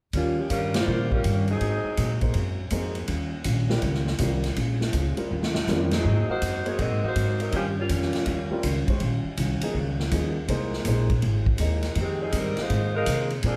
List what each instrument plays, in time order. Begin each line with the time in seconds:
0.13 upright bass D#2, hollow-body jazz guitar D#3 G3 C#4 F4, saxophone section G3 A#3 C#4 F4, kick, ride
0.37 saxophone section F3 A#3 C#4 G4
0.48 upright bass G2, hollow-body jazz guitar D#3 G3 C#4 F4, saxophone section G3 C#4 F4 A#4, kick, hi-hat pedal, ride
0.73 grand piano G3 C4 F4 A#4, saxophone section A#3 F4 G4 C5, snare, ride
0.87 upright bass A#2, hollow-body jazz guitar D#3 G3 C#4 F4
1.11 saxophone section G3 C#4 F4 A#4, kick
1.24 upright bass G2, hollow-body jazz guitar D#3 G3 C#4 F4, kick, hi-hat pedal, ride
1.48 saxophone section F#3 C4 D#4 G#4, ride
1.61 upright bass G#2, hollow-body jazz guitar G#2 F#3 A#3 C4, kick, ride
1.84 muted upright bass stroke
1.97 hollow-body jazz guitar G#2 F#3 A#3 C4, upright bass A#2, kick, hi-hat pedal, ride
2.21 grand piano A#3 D#4 G#4 C5, kick, ride
2.34 upright bass F#2, hollow-body jazz guitar G#2 F#3 A#3 C4, kick, ride
2.70 upright bass F2, hollow-body jazz guitar G#2 F#3 A#3 C4, grand piano A#3 D#4 G#4 C5, kick, hi-hat pedal, ride
2.95 ride
3.07 upright bass D#2, hollow-body jazz guitar D#3 G3 C#4 F4, kick, ride
3.44 upright bass A#1, hollow-body jazz guitar D#3 G3 C#4 F4, kick, hi-hat pedal, ride
3.69 grand piano G3 C4 F4 A#4, snare
3.82 upright bass C#2, hollow-body jazz guitar D#3 G3 C#4 F4, kick, ride
3.94 snare
4.07 snare
4.19 upright bass C2, hollow-body jazz guitar D#3 G3 C#4 F4, grand piano G3 C4 F4 A#4, kick, hi-hat pedal, ride
4.44 snare, ride
4.56 upright bass A#1, hollow-body jazz guitar A#2 G#3 C#4 F4, kick, ride
4.81 snare
4.93 upright bass C#2, hollow-body jazz guitar A#2 G#3 C#4 F4, kick, hi-hat pedal, ride
5.17 grand piano G3 C4 F4 A#4, muted upright bass stroke, ride
5.31 upright bass D#2, hollow-body jazz guitar D#3 G3 C#4 F4
5.43 snare
5.55 snare
5.67 upright bass F2, hollow-body jazz guitar D#3 G3 C#4 F4, saxophone section F3 A#3 C#4 G4, grand piano G3 C4 F4 A#4, snare, hi-hat pedal
5.91 saxophone section F#3 C4 D#4 G#4, snare, ride
6.05 upright bass G#2, hollow-body jazz guitar G#2 F#3 A#3 C4
6.29 saxophone section A#3 D#4 F#4 C5, muted upright bass stroke
6.42 upright bass F#2, hollow-body jazz guitar G#2 F#3 A#3 C4, kick, hi-hat pedal, ride
6.65 grand piano A#3 D#4 G#4 C5, saxophone section A#3 D#4 F#4 C#5, ride
6.79 hollow-body jazz guitar G#2 F#3 A#3 C4, upright bass A#2, saxophone section C4 F#4 A#4 D#5, kick, ride
6.91 upright bass G#2
7.03 upright bass F#2, saxophone section A#3 D#4 F#4 C5
7.16 hollow-body jazz guitar G#2 F#3 A#3 C4, upright bass G#2, kick, hi-hat pedal, ride
7.40 saxophone section F#3 C4 D#4 A#4, ride
7.52 upright bass G2, hollow-body jazz guitar D#3 G3 C#4 F4, saxophone section F3 A#3 C#4 G4, kick, ride
7.79 saxophone section G3 A#3 C#4 F4
7.89 upright bass F2, hollow-body jazz guitar D#3 G3 C#4 F4, kick, hi-hat pedal, ride
8.01 snare
8.13 snare, ride
8.26 upright bass D#2, hollow-body jazz guitar D#3 G3 C#4 F4, kick, ride
8.50 grand piano G3 C4 F4 A#4, muted upright bass stroke
8.63 upright bass C#2, hollow-body jazz guitar D#3 G3 C#4 F4, kick, hi-hat pedal, ride
8.88 grand piano G#3 C#4 G4 C5, kick, ride
9.00 upright bass A#1, hollow-body jazz guitar D#3 G3 C#4 F4, kick, ride
9.24 muted upright bass stroke
9.37 upright bass C2, hollow-body jazz guitar D#3 G3 C#4 F4, kick, hi-hat pedal, ride
9.61 grand piano F3 A#3 D#4 G#4, muted upright bass stroke, ride
9.75 upright bass C#2, hollow-body jazz guitar D#3 G3 C#4 F4, kick
9.99 snare
10.11 upright bass D#2, hollow-body jazz guitar D#3 G3 C#4 F4, grand piano F3 A#3 D#4 G#4, kick, hi-hat pedal, ride
10.47 upright bass C2, hollow-body jazz guitar C3 G#3 A#3 E4, grand piano A#3 D#4 G#4 C5, kick, ride
10.73 snare
10.85 upright bass A#1, hollow-body jazz guitar C3 G#3 A#3 E4, grand piano A#3 D#4 G#4 C5, kick, hi-hat pedal, ride
11.10 kick, ride
11.21 upright bass G#1, hollow-body jazz guitar C3 G#3 A#3 E4, kick, ride
11.46 kick
11.58 upright bass D#2, hollow-body jazz guitar C3 G#3 A#3 E4, grand piano A#3 D#4 G#4 D#5, kick, hi-hat pedal, ride
11.83 snare, ride
11.95 upright bass F2, hollow-body jazz guitar F2 D#3 G#3 C4, kick, ride
12.00 saxophone section D#3 G#3 C4 G4
12.22 saxophone section F3 C4 D#4 G#4
12.32 hollow-body jazz guitar F2 D#3 G#3 C4, upright bass G2, saxophone section D#4, kick, hi-hat pedal, ride
12.37 saxophone section G3 C4 A#4
12.57 saxophone section G#3 D#4 F4 C5, muted upright bass stroke, snare, ride
12.69 hollow-body jazz guitar F2 D#3 G#3 C4, upright bass G#2, kick, ride
12.95 saxophone section G#3 D#4 F4 A#4
13.06 hollow-body jazz guitar F2 D#3 G#3 C4, upright bass C3, grand piano A#3 D#4 G#4 C5, kick, hi-hat pedal, ride
13.30 ride
13.43 hollow-body jazz guitar A#2 G#3 C4 D4, upright bass A#2, saxophone section F3 C4 D4 G#4, grand piano C4 F4 A#4 D5, kick, ride